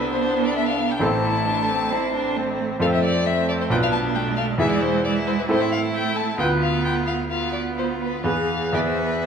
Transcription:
Already playing: C2 B3 C4 D4 E4 A4
0.00 B4
0.11 C5
0.23 C5
0.45 D5
0.57 E5
0.68 F5
0.91 G5
1.00 A1 A3 C4 E4 A4 A5
1.24 E4
1.47 D4
1.69 C4
1.90 C4 E4
2.13 D4
2.36 A3 C4
2.80 F2 A3 C4 F4 A4 F5
2.93 E5
3.04 D5
3.26 A3 C4 E5
3.49 D5
3.61 C5
3.70 B1 B3 D4 F4 B4 G5
3.83 F5
3.92 A5
4.15 A3 G5
4.37 F5
4.58 E2 G#3 B3 E4 G#4 E5
4.72 D5
4.82 C5
5.05 G#3 E4 D5
5.27 C5
5.39 B4
5.48 A2 A3 C4 E4 A4 C5
5.61 E5
5.72 F5
5.94 G5
6.16 A5
6.38 D2 B3 F4 B4 G5
6.62 F5
6.85 G5
7.07 F5
7.30 B3 F4 F5
7.53 D5
7.78 F4 C5
8.01 B4
8.24 E2 B3 G#4 B4 F5
8.73 E2 B3 G#4 B4 D5 E5
8.87 C5
8.98 B4
9.23 C5

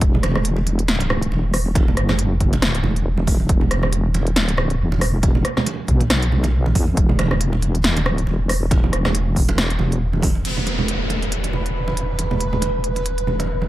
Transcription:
0.01 E1, kick, closed hi-hat
0.15 low conga
0.23 cross-stick, closed hi-hat, muted conga
0.35 cross-stick, low conga
0.45 closed hi-hat
0.57 muted conga
0.67 closed hi-hat, high conga
0.79 closed hi-hat
0.88 snare, closed hi-hat
1.00 closed hi-hat, muted conga
1.10 cross-stick, low conga
1.22 closed hi-hat
1.32 E1, muted conga
1.54 cross-stick, open hi-hat
1.75 kick, closed hi-hat, muted conga
1.88 low conga
1.97 F#1, cross-stick, closed hi-hat
2.09 cross-stick, snare, muted conga, low conga
2.19 closed hi-hat
2.40 kick, closed hi-hat
2.53 closed hi-hat, muted conga
2.62 cross-stick, snare, closed hi-hat
2.75 closed hi-hat
2.83 E1, muted conga, low conga
2.96 closed hi-hat
3.17 high conga
3.27 kick, open hi-hat, muted conga
3.40 high conga
3.49 E1, kick, closed hi-hat
3.61 low conga
3.71 cross-stick, closed hi-hat, muted conga
3.83 cross-stick, low conga
3.93 closed hi-hat
4.14 closed hi-hat, muted conga, high conga
4.27 closed hi-hat
4.36 snare, closed hi-hat
4.48 closed hi-hat, muted conga
4.57 cross-stick, low conga
4.70 closed hi-hat
4.80 E1
4.92 muted conga
5.01 cross-stick, open hi-hat
5.23 kick, closed hi-hat, muted conga
5.35 low conga
5.45 cross-stick, closed hi-hat
5.57 cross-stick, snare, low conga
5.66 closed hi-hat, muted conga
5.88 B1, kick, closed hi-hat
6.00 closed hi-hat, muted conga
6.10 cross-stick, snare, closed hi-hat
6.22 closed hi-hat
6.32 low conga
6.44 closed hi-hat, muted conga
6.66 high conga
6.75 E2, kick, open hi-hat, muted conga
6.87 high conga
6.97 E1, kick, closed hi-hat
7.09 low conga
7.19 cross-stick, closed hi-hat, muted conga
7.31 cross-stick, low conga
7.41 closed hi-hat
7.53 muted conga
7.62 closed hi-hat, high conga
7.75 closed hi-hat
7.84 D#1, snare, closed hi-hat
7.97 closed hi-hat, muted conga
8.06 cross-stick, low conga
8.14 D1
8.18 closed hi-hat
8.27 E1, muted conga
8.49 cross-stick, open hi-hat
8.71 kick, closed hi-hat, muted conga
8.84 low conga
8.93 E1, cross-stick, closed hi-hat
9.05 cross-stick, snare, muted conga, low conga
9.15 closed hi-hat
9.36 kick, open hi-hat
9.49 closed hi-hat, muted conga
9.58 cross-stick, snare, closed hi-hat
9.70 closed hi-hat
9.79 E1, muted conga, high conga, low conga
9.92 closed hi-hat
10.13 high conga
10.22 kick, open hi-hat, muted conga
10.35 high conga
10.45 E1 B4, closed hi-hat, crash, downlifter
10.57 low conga
10.67 closed hi-hat, muted conga
10.79 low conga
10.88 closed hi-hat
11.10 closed hi-hat, muted conga
11.22 closed hi-hat
11.32 closed hi-hat
11.44 closed hi-hat, muted conga
11.53 low conga
11.66 closed hi-hat
11.88 muted conga
11.97 closed hi-hat
12.19 closed hi-hat, muted conga
12.31 low conga
12.40 closed hi-hat
12.53 low conga
12.62 closed hi-hat, muted conga
12.84 closed hi-hat
12.96 closed hi-hat, muted conga
13.06 closed hi-hat
13.18 closed hi-hat
13.27 high conga, low conga
13.39 closed hi-hat, muted conga
13.62 high conga

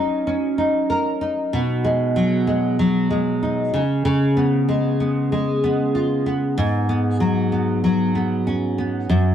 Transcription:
Already playing: F#3 C#4 D#4
0.27 C#4
0.58 D#4
0.90 A#4
1.21 D#4
1.53 B2
1.84 G#3
2.16 F#3
2.47 G#3
2.79 F#3
3.11 G#3
3.43 D#4
3.74 C#3
4.05 C#3
4.37 B3
4.69 G#3
5.00 B3
5.32 G#3
5.64 B3
5.95 F4
6.26 B3
6.58 G#2
6.89 B3
7.20 F#3
7.52 B3
7.84 F#3
8.15 B3
8.47 C#4
8.78 B3
9.09 F#2

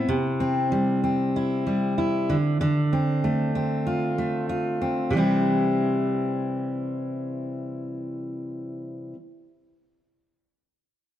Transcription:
Already playing: B3 C4 E4
0.09 C3
0.40 C4
0.72 G3
1.04 C4
1.36 E4
1.67 G3
1.98 E4
2.30 D3
2.61 D3
2.93 C4
3.24 A3
3.55 C4
3.87 F4
4.18 A3
4.49 F4
4.82 C4
5.11 C3 E3
5.15 G3 C4 E4

